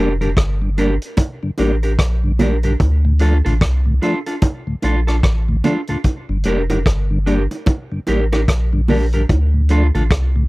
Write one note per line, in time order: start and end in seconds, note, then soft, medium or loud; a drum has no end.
0.00 0.35 F1 loud
0.00 0.12 D4 medium
0.00 0.12 G4 medium
0.00 0.13 A#4 medium
0.21 0.29 G2 soft
0.21 0.29 D3 soft
0.21 0.29 D4 medium
0.21 0.29 G4 medium
0.21 0.29 A#4 medium
0.21 closed hi-hat soft
0.37 0.99 G1 medium
0.37 kick loud
0.37 cross-stick loud
0.37 closed hi-hat medium
0.62 0.70 G2 medium
0.62 0.70 D3 medium
0.78 0.90 G3 medium
0.78 0.91 A#3 medium
0.78 0.93 D4 medium
0.78 0.91 D4 medium
0.78 0.94 G4 medium
0.78 0.94 A#4 medium
0.78 closed hi-hat medium
1.02 closed hi-hat medium
1.17 kick loud
1.17 closed hi-hat medium
1.17 high bongo medium
1.43 1.51 G2 medium
1.43 1.51 D3 medium
1.58 1.97 A1 medium
1.58 1.71 G3 medium
1.58 1.71 A#3 medium
1.58 1.74 D4 medium
1.58 1.72 D4 medium
1.58 1.74 G4 medium
1.58 1.75 A#4 medium
1.58 closed hi-hat medium
1.58 high bongo medium
1.83 1.92 D4 soft
1.83 1.91 G4 medium
1.83 1.91 A#4 medium
1.83 closed hi-hat soft
1.99 2.76 A#1 medium
1.99 kick loud
1.99 cross-stick loud
1.99 closed hi-hat medium
2.24 2.32 G2 medium
2.24 2.32 D3 medium
2.39 2.52 G3 medium
2.39 2.53 A#3 medium
2.39 2.55 D4 medium
2.39 2.53 D4 medium
2.39 2.56 G4 medium
2.39 2.56 A#4 medium
2.39 closed hi-hat medium
2.39 low bongo medium
2.63 2.73 G2 medium
2.63 2.73 D3 medium
2.63 2.73 D4 medium
2.63 2.72 G4 medium
2.63 2.72 A#4 medium
2.63 closed hi-hat medium
2.80 3.42 D2 loud
2.80 kick medium
2.80 closed hi-hat medium
2.80 high bongo soft
3.05 3.13 D2 soft
3.05 3.13 A2 medium
3.19 3.34 F3 medium
3.19 3.34 A3 medium
3.19 3.36 D4 medium
3.19 3.34 D4 medium
3.19 3.36 F4 medium
3.19 3.37 A4 medium
3.19 closed hi-hat medium
3.45 3.61 A1 loud
3.45 3.54 D2 medium
3.45 3.54 A2 medium
3.45 3.53 D4 medium
3.45 3.53 F4 medium
3.45 3.53 A4 medium
3.45 closed hi-hat medium
3.61 4.00 C2 loud
3.61 kick loud
3.61 cross-stick loud
3.61 closed hi-hat medium
3.86 3.94 D2 medium
3.86 3.94 A2 medium
4.02 4.15 F3 medium
4.02 4.15 A3 medium
4.02 4.17 D4 medium
4.02 4.15 D4 medium
4.02 4.18 F4 medium
4.02 4.18 A4 medium
4.02 closed hi-hat medium
4.26 4.35 D4 medium
4.26 4.35 F4 medium
4.26 4.34 A4 medium
4.26 closed hi-hat medium
4.42 kick loud
4.42 closed hi-hat medium
4.42 high bongo medium
4.67 4.76 D2 medium
4.67 4.76 A2 medium
4.82 5.22 A#1 medium
4.82 4.96 F3 medium
4.82 4.96 A3 medium
4.82 4.99 D4 medium
4.82 4.96 D4 medium
4.82 4.99 F4 medium
4.82 4.99 A4 medium
4.82 closed hi-hat medium
4.82 high bongo medium
5.07 5.16 D4 soft
5.07 5.16 F4 medium
5.07 5.15 A4 medium
5.07 cross-stick medium
5.07 closed hi-hat soft
5.23 5.62 A1 medium
5.23 kick loud
5.23 cross-stick loud
5.23 closed hi-hat medium
5.48 5.57 D2 medium
5.48 5.57 A2 medium
5.64 5.77 F3 medium
5.64 5.77 A3 medium
5.64 5.80 D4 medium
5.64 5.77 D4 medium
5.64 5.80 F4 medium
5.64 5.80 A4 medium
5.64 closed hi-hat medium
5.64 low bongo medium
5.87 5.97 D2 medium
5.87 5.97 A2 medium
5.87 5.97 D4 medium
5.87 5.97 F4 medium
5.87 5.97 A4 medium
5.87 closed hi-hat medium
6.04 kick medium
6.04 closed hi-hat medium
6.04 high bongo soft
6.29 6.44 G1 medium
6.29 6.38 G2 medium
6.29 6.38 D3 medium
6.44 6.84 F1 medium
6.44 6.58 G3 medium
6.44 6.58 A#3 medium
6.44 6.61 D4 medium
6.44 6.58 D4 medium
6.44 6.61 G4 medium
6.44 6.62 A#4 loud
6.44 closed hi-hat medium
6.44 high bongo soft
6.70 6.78 G2 medium
6.70 6.78 D3 soft
6.70 6.78 D4 medium
6.70 6.78 G4 medium
6.70 6.78 A#4 medium
6.70 closed hi-hat medium
6.70 high bongo medium
6.86 7.48 G1 loud
6.86 kick loud
6.86 cross-stick loud
6.86 closed hi-hat medium
7.10 7.19 G2 medium
7.10 7.19 D3 medium
7.26 7.39 G3 medium
7.26 7.40 A#3 medium
7.26 7.42 D4 medium
7.26 7.40 D4 medium
7.26 7.42 G4 medium
7.26 7.43 A#4 medium
7.26 closed hi-hat medium
7.51 closed hi-hat medium
7.51 high bongo soft
7.66 kick loud
7.66 closed hi-hat medium
7.66 high bongo medium
7.92 8.00 G2 medium
7.92 8.00 D3 medium
8.07 8.46 A1 medium
8.07 8.21 G3 medium
8.07 8.21 A#3 medium
8.07 8.23 D4 medium
8.07 8.21 D4 medium
8.07 8.24 G4 medium
8.07 8.24 A#4 medium
8.07 closed hi-hat medium
8.07 high bongo medium
8.32 8.41 D4 soft
8.32 8.41 G4 medium
8.32 8.40 A#4 medium
8.32 cross-stick medium
8.32 closed hi-hat soft
8.32 high bongo medium
8.48 9.25 A#1 medium
8.48 kick loud
8.48 cross-stick medium
8.48 closed hi-hat loud
8.73 8.81 G2 medium
8.73 8.81 D3 medium
8.88 9.02 G3 medium
8.88 9.02 A#3 medium
8.88 9.04 D4 medium
8.88 9.02 D4 medium
8.88 9.05 G4 medium
8.88 9.05 A#4 medium
8.88 open hi-hat medium
8.88 low bongo medium
9.13 9.22 G2 medium
9.13 9.22 D3 soft
9.13 9.22 D4 soft
9.13 9.22 G4 medium
9.13 9.21 A#4 medium
9.13 closed hi-hat medium
9.29 9.91 D2 loud
9.29 kick medium
9.29 closed hi-hat medium
9.29 high bongo medium
9.54 9.62 D2 medium
9.54 9.62 A2 medium
9.69 9.83 F3 medium
9.69 9.83 A3 medium
9.69 9.86 D4 medium
9.69 9.83 D4 medium
9.69 9.86 F4 medium
9.69 9.86 A4 medium
9.69 closed hi-hat medium
9.95 10.10 A1 loud
9.95 10.03 D2 medium
9.95 10.03 A2 soft
9.95 10.03 D4 medium
9.95 10.03 F4 medium
9.95 10.03 A4 medium
9.95 closed hi-hat soft
10.11 10.48 C2 medium
10.11 kick loud
10.11 cross-stick loud
10.11 closed hi-hat medium
10.36 10.44 D2 medium
10.36 10.44 A2 medium